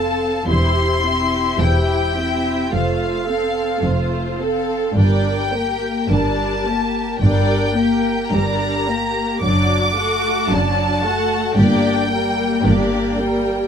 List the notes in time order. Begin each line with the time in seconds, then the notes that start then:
Already playing: F1 C4 A4 F5 A5
0.47 E1 E2 E4 G4 C5 C6
1.03 C4 E4 G4 E5
1.60 E1 E2 E4 G4 C5 G5
2.16 C4 E4 G4 E5
2.72 F1 F2 A3 F4 C5 F5
3.26 C4 A4 F5
3.81 F1 F2 A3 F4 C5
4.38 C4 A4
4.43 A4 F5
4.95 G1 G2 G3 D4 A#4 G5
4.99 D5
5.52 A#3 G4 A#4
6.10 G1 G2 G3 D4 A#4 D5 A5
6.66 A#3 G4 A#4
7.20 G1 G2 G3 D4 A#4 D5 G5
7.76 A#3 G4 A#4
8.32 G1 G2 G3 D4 A#4 D5 A#5
8.88 A#3 G4 A#4
9.41 F#1 F#2 F#3 D4 F#4 D5 D6
9.95 A3 F#4 A4 F#5
10.49 F#1 F#2 F#3 D4 F#4 D5 A5
11.02 A3 F#4 A4 F#5
11.56 G1 G2 A#3 D4 G4 D5 G5
12.12 G3 A#3 A#4 G5
12.65 G1 G2 A#3 D4 G4 D5
13.16 G3 A#3 A#4 G5